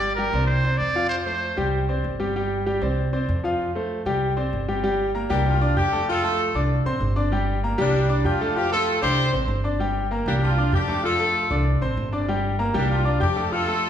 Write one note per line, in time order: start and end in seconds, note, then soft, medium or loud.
0.00 0.27 G1 medium
0.00 0.12 G3 medium
0.00 0.12 G4 medium
0.00 0.14 D5 loud
0.00 0.12 G5 medium
0.15 0.31 G3 medium
0.15 0.31 G4 medium
0.15 0.45 A#4 medium
0.15 0.31 G5 medium
0.33 0.76 C2 loud
0.33 0.59 C4 medium
0.33 0.59 C5 medium
0.33 0.59 D5 medium
0.46 0.79 C5 medium
0.64 0.89 C4 medium
0.64 0.90 C5 medium
0.64 0.90 D5 medium
0.78 1.52 F2 medium
0.78 1.08 D5 loud
0.95 1.21 F3 medium
0.95 1.21 F4 medium
0.95 1.21 F5 medium
1.09 1.16 C5 medium
1.25 1.51 A3 medium
1.25 1.51 A4 medium
1.25 1.69 C5 medium
1.25 1.52 C5 medium
1.57 2.01 C2 medium
1.57 1.82 G3 medium
1.57 1.83 G4 medium
1.57 1.83 G5 medium
1.89 2.14 C4 medium
1.89 2.14 C5 medium
1.89 2.15 D5 medium
2.04 2.76 G1 medium
2.20 2.32 G3 medium
2.20 2.32 G4 medium
2.20 2.32 G5 medium
2.36 2.61 G3 medium
2.36 2.61 G4 medium
2.36 2.61 G5 medium
2.66 2.79 G3 medium
2.66 2.79 G4 medium
2.66 2.79 G5 medium
2.82 3.25 C2 medium
2.82 3.07 C4 medium
2.82 3.07 C5 medium
2.82 3.07 D5 medium
3.13 3.38 C4 medium
3.13 3.38 C5 medium
3.13 3.39 D5 medium
3.29 4.01 F2 medium
3.44 3.69 F3 medium
3.44 3.69 F4 medium
3.44 3.70 F5 medium
3.75 4.01 A3 medium
3.75 4.01 A4 medium
3.75 4.01 C5 medium
4.05 4.49 C2 medium
4.05 4.32 G3 medium
4.05 4.32 G4 medium
4.05 4.32 G5 medium
4.37 4.62 C4 medium
4.37 4.63 C5 medium
4.37 4.62 D5 medium
4.53 5.25 G1 medium
4.68 4.81 G3 medium
4.68 4.81 G4 medium
4.68 4.81 G5 medium
4.83 5.09 G3 medium
4.83 5.09 G4 medium
4.83 5.09 G5 medium
5.15 5.27 A#3 medium
5.15 5.27 A#4 medium
5.15 5.28 A#5 medium
5.30 5.74 C2 loud
5.30 5.55 G3 loud
5.30 5.45 A#3 medium
5.30 5.45 D4 medium
5.30 5.56 G4 loud
5.30 5.56 G5 medium
5.47 5.77 D4 medium
5.47 5.77 F4 medium
5.61 5.74 D4 medium
5.61 5.74 D5 medium
5.61 5.74 D6 medium
5.76 6.49 F2 medium
5.76 6.06 D4 medium
5.76 5.89 G4 medium
5.76 6.06 G4 loud
5.76 5.89 G5 medium
5.76 5.90 G6 medium
5.92 6.05 A3 medium
5.92 6.05 A4 medium
5.92 6.05 A5 medium
6.09 6.21 F4 medium
6.09 6.67 F4 medium
6.09 6.67 A4 loud
6.09 6.21 F5 medium
6.09 6.21 F6 medium
6.23 6.49 A3 medium
6.23 6.49 A4 medium
6.23 6.49 A5 medium
6.54 6.83 C2 medium
6.54 6.80 D4 medium
6.54 6.80 D5 medium
6.54 6.80 D6 medium
6.85 7.00 A1 medium
6.85 7.11 C4 medium
6.85 7.11 C5 medium
6.85 7.11 C6 medium
7.01 7.73 G1 loud
7.16 7.29 D4 medium
7.16 7.29 D5 medium
7.16 7.29 D6 medium
7.32 7.57 G3 medium
7.32 7.58 G4 medium
7.32 7.58 G5 medium
7.63 7.76 A#3 medium
7.63 7.76 A#4 medium
7.63 7.76 A#5 medium
7.78 8.22 C2 loud
7.78 8.04 G3 loud
7.78 8.23 G3 medium
7.78 8.23 D4 loud
7.78 8.04 G4 loud
7.78 8.04 G5 medium
8.09 8.22 D4 medium
8.09 8.22 D5 medium
8.09 8.22 D6 medium
8.24 8.97 F2 medium
8.24 8.57 D4 medium
8.24 8.57 F4 medium
8.24 8.38 G4 medium
8.24 8.38 G5 medium
8.24 8.38 G6 medium
8.41 8.53 A3 medium
8.41 8.54 A4 medium
8.41 8.54 A5 medium
8.56 8.72 C4 medium
8.56 8.69 F4 medium
8.56 8.71 G4 loud
8.56 8.69 F5 medium
8.56 8.69 F6 medium
8.71 8.97 A3 medium
8.71 9.01 F4 medium
8.71 8.97 A4 medium
8.71 9.01 A4 loud
8.71 8.97 A5 medium
9.02 9.31 C2 loud
9.02 9.27 D4 medium
9.02 9.31 G4 medium
9.02 9.31 C5 loud
9.02 9.28 D5 medium
9.02 9.28 D6 medium
9.33 9.47 A1 medium
9.33 9.59 C4 medium
9.33 9.59 C5 medium
9.33 9.59 C6 medium
9.48 10.21 G1 loud
9.64 9.77 D4 medium
9.64 9.77 D5 medium
9.64 9.77 D6 medium
9.79 10.05 G3 medium
9.79 10.06 G4 medium
9.79 10.06 G5 medium
10.11 10.24 A#3 medium
10.11 10.24 A#4 medium
10.11 10.24 A#5 medium
10.26 10.69 C2 loud
10.26 10.52 G3 medium
10.26 10.35 A#3 medium
10.26 10.34 D4 medium
10.26 10.53 G4 loud
10.26 10.53 G5 medium
10.43 10.72 D4 medium
10.43 10.71 F4 medium
10.58 10.70 D4 medium
10.58 10.71 D5 medium
10.58 10.71 D6 medium
10.72 11.45 F2 loud
10.72 11.05 D4 medium
10.72 10.86 G4 medium
10.72 11.05 G4 loud
10.72 10.86 G5 medium
10.72 10.86 G6 medium
10.88 11.01 A3 medium
10.88 11.01 A4 medium
10.88 11.01 A5 medium
11.03 11.16 F4 medium
11.03 11.63 F4 medium
11.03 11.63 A4 loud
11.03 11.16 F5 medium
11.03 11.17 F6 medium
11.19 11.45 A3 medium
11.19 11.45 A4 medium
11.19 11.45 A5 medium
11.50 11.79 C2 loud
11.50 11.76 D4 medium
11.50 11.76 D5 medium
11.50 11.76 D6 medium
11.81 11.96 A1 medium
11.81 12.07 C4 medium
11.81 12.07 C5 medium
11.81 12.07 C6 medium
11.97 12.69 G1 loud
12.12 12.25 D4 medium
12.12 12.26 D5 medium
12.12 12.26 D6 medium
12.28 12.54 G3 medium
12.28 12.54 G4 medium
12.28 12.54 G5 medium
12.59 12.72 A#3 medium
12.59 12.72 A#4 medium
12.59 12.72 A#5 medium
12.74 13.18 C2 medium
12.74 13.00 G3 medium
12.74 12.90 A#3 medium
12.74 12.89 D4 medium
12.74 13.00 G4 loud
12.74 13.00 G5 loud
12.91 13.19 D4 medium
12.91 13.20 F4 medium
13.05 13.18 D4 medium
13.05 13.18 D5 medium
13.05 13.18 D6 medium
13.20 13.89 F2 loud
13.20 13.51 D4 medium
13.20 13.33 G4 medium
13.20 13.51 G4 loud
13.20 13.33 G5 medium
13.20 13.34 G6 medium
13.36 13.49 A3 medium
13.36 13.49 A4 medium
13.36 13.49 A5 medium
13.52 13.65 F4 medium
13.52 13.89 F4 medium
13.52 13.89 A4 loud
13.52 13.65 F5 medium
13.52 13.65 F6 medium
13.67 13.89 A3 medium
13.67 13.89 A4 medium
13.67 13.89 A5 medium